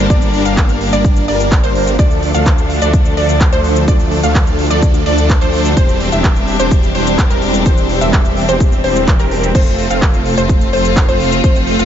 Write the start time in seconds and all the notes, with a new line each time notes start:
Already playing: G3 A#3 D4
0.10 G1 G3 A#3 D4 A#4 D5, kick, closed hi-hat, shaker
0.22 closed hi-hat, shaker
0.34 open hi-hat
0.45 G1 G3 A#3 D4 A#4 F5, closed hi-hat, shaker
0.57 kick, clap, closed hi-hat, shaker
0.69 closed hi-hat, shaker
0.81 open hi-hat
0.93 G1 G3 A#3 D4 A#4 D5, closed hi-hat, shaker
1.04 kick, closed hi-hat, shaker
1.16 closed hi-hat, shaker
1.28 G1 G3 A#3 D4 A#4 D5, open hi-hat
1.40 closed hi-hat, shaker
1.52 kick, clap, closed hi-hat, shaker
1.64 G1 G3 A#3 D4 A#4 C5, closed hi-hat, shaker
1.75 open hi-hat
1.87 closed hi-hat, shaker
1.99 D2 F3 A3 D4 D5, kick, closed hi-hat, shaker
2.11 closed hi-hat, shaker
2.23 open hi-hat
2.34 D2 F3 A3 D4 A4 F5, closed hi-hat, shaker
2.46 kick, clap, closed hi-hat, shaker
2.58 closed hi-hat, shaker
2.70 open hi-hat
2.82 D2 F3 A3 D4 A4 D5, shaker
2.93 kick, closed hi-hat, shaker
3.05 closed hi-hat, shaker
3.17 D2 F3 A3 D4 A4 D5, open hi-hat
3.29 closed hi-hat, shaker
3.41 kick, clap, closed hi-hat, shaker
3.53 D2 F3 A3 D4 A4 C5, closed hi-hat, shaker
3.64 open hi-hat
3.76 closed hi-hat, shaker
3.88 D2 A3 D4 A4 D5, kick, closed hi-hat, shaker
4.00 closed hi-hat, shaker
4.12 open hi-hat
4.23 D2 F3 A3 D4 A4 F5, closed hi-hat, shaker
4.35 kick, clap, closed hi-hat, shaker
4.47 closed hi-hat, shaker
4.59 open hi-hat
4.70 D2 F3 A3 D4 A4 D5, closed hi-hat, shaker
4.82 kick, closed hi-hat, shaker
4.94 closed hi-hat, shaker
5.06 D2 F3 A3 D4 A4 D5, open hi-hat
5.18 closed hi-hat, shaker
5.30 kick, clap, closed hi-hat, shaker
5.41 D2 F3 A3 D4 A4 C5, closed hi-hat, shaker
5.53 open hi-hat
5.65 shaker
5.77 E1 G3 C4 G4 C5, kick, closed hi-hat, shaker
5.89 closed hi-hat, shaker
6.00 open hi-hat
6.12 E1 E3 G3 C4 G4 E5, closed hi-hat, shaker
6.24 kick, clap, closed hi-hat, shaker
6.36 closed hi-hat, shaker
6.48 open hi-hat
6.59 E1 E3 G3 C4 G4 C5, closed hi-hat, shaker
6.71 kick, closed hi-hat, shaker
6.83 closed hi-hat, shaker
6.95 E1 E3 G3 C4 G4 C5, open hi-hat
7.07 closed hi-hat, shaker
7.19 kick, clap, closed hi-hat, shaker
7.30 E1 E3 G3 C4 G4 A#4, closed hi-hat, shaker
7.42 open hi-hat
7.54 shaker
7.66 E1 G3 C4 G4 C5, kick, closed hi-hat, shaker
7.78 closed hi-hat, shaker
7.89 open hi-hat
8.01 E1 E3 G3 C4 G4 E5, closed hi-hat, shaker
8.13 kick, clap, closed hi-hat, shaker
8.25 closed hi-hat, shaker
8.37 open hi-hat
8.49 E1 E3 G3 C4 G4 C5, shaker
8.60 kick, closed hi-hat, shaker
8.72 closed hi-hat, shaker
8.84 E1 E3 G3 C4 G4 C5, open hi-hat
8.96 closed hi-hat, shaker
9.08 kick, clap, closed hi-hat, shaker
9.20 E1 E3 G3 C4 G4 A#4, closed hi-hat, shaker
9.31 open hi-hat
9.43 closed hi-hat, shaker
9.55 F1 F3 A3 C4 F4 A4 C5, kick, closed hi-hat, crash, shaker
9.67 closed hi-hat, shaker
9.79 open hi-hat
9.90 F1 F3 A3 C4 A4 F5, closed hi-hat, shaker
10.02 kick, clap, closed hi-hat, shaker
10.14 closed hi-hat, shaker
10.26 open hi-hat
10.38 F1 F3 A3 C4 A4 C5, closed hi-hat, shaker
10.49 kick, closed hi-hat, shaker
10.61 closed hi-hat, shaker
10.73 F1 F3 A3 C4 A4 C5, open hi-hat
10.85 shaker
10.97 kick, clap, closed hi-hat, shaker
11.08 F1 F3 A3 C4 A4 C5, closed hi-hat, shaker
11.20 open hi-hat
11.32 closed hi-hat, shaker
11.44 F1 F3 A3 C4 C5, kick, closed hi-hat, shaker
11.56 closed hi-hat, shaker
11.67 open hi-hat
11.79 F1 F3 A3 C4 A4 F5, closed hi-hat, shaker